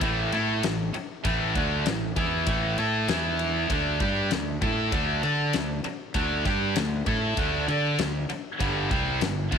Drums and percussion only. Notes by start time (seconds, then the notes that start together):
0.01 kick, ride
0.32 ride
0.63 snare, ride
0.94 ride
1.25 kick, ride
1.55 kick, ride
1.86 snare, ride
2.16 kick, ride
2.47 kick, ride
2.78 ride
3.08 snare, ride
3.39 ride
3.70 kick, ride
4.00 kick, ride
4.31 snare, ride
4.62 kick, ride
4.92 kick, ride
5.23 ride
5.53 snare, ride
5.84 ride
6.14 kick, ride
6.45 kick, snare, ride
6.76 snare, ride
7.06 kick, ride
7.37 kick, ride
7.68 ride
7.99 snare, ride
8.30 ride
8.60 kick, ride
8.91 kick, ride
9.21 snare, ride
9.52 kick, ride